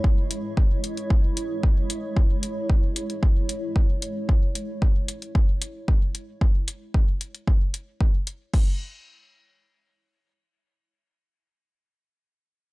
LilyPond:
<<
  \new Staff \with { instrumentName = "Ambient pad" } { \time 4/4 \key cis \minor \tempo 4 = 113 <gis e' cis''>1~ | <gis e' cis''>1 | r1 | r1 |
r1 | r1 | }
  \new DrumStaff \with { instrumentName = "Drums" } \drummode { \time 4/4 bd8 hh8 bd8 hh16 hh16 bd8 hh8 bd8 hh8 | bd8 hh8 bd8 hh16 hh16 bd8 hh8 bd8 hh8 | bd8 hh8 bd8 hh16 hh16 bd8 hh8 bd8 hh8 | bd8 hh8 bd8 hh16 hh16 bd8 hh8 bd8 hh8 |
<cymc bd>4 r4 r4 r4 | r4 r4 r4 r4 | }
>>